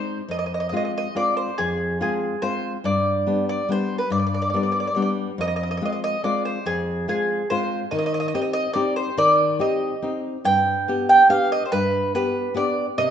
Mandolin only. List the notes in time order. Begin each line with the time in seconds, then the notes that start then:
Already playing: C5
0.31 D#5
0.39 D#5
0.46 D#5
0.54 D#5
0.60 D#5
0.69 D#5
0.77 D#5
0.85 D#5
0.98 D#5
1.17 D5
1.37 C5
1.58 G#4
2.02 G#4
2.42 C5
2.85 D5
3.49 D5
3.72 C5
3.98 B4
4.12 D5
4.20 D5
4.27 D5
4.34 D5
4.42 D5
4.50 D5
4.56 D5
4.63 D5
4.72 D5
4.80 D5
4.87 D5
4.95 D5
5.02 D5
5.41 D#5
5.48 D#5
5.56 D#5
5.63 D#5
5.71 D#5
5.77 D#5
5.85 D#5
5.92 D#5
6.04 D#5
6.24 D5
6.45 C5
6.66 G#4
7.09 G#4
7.50 C5
7.91 D#5
7.99 D#5
8.06 D#5
8.14 D#5
8.20 D#5
8.28 D#5
8.35 D#5
8.42 D#5
8.53 D#5
8.73 D5
8.96 C5
9.18 D5
9.61 D#5
10.45 G5
11.09 G5
11.30 F5
11.52 D#5
11.66 C5
11.72 B4
12.15 B4
12.57 D5
12.98 D#5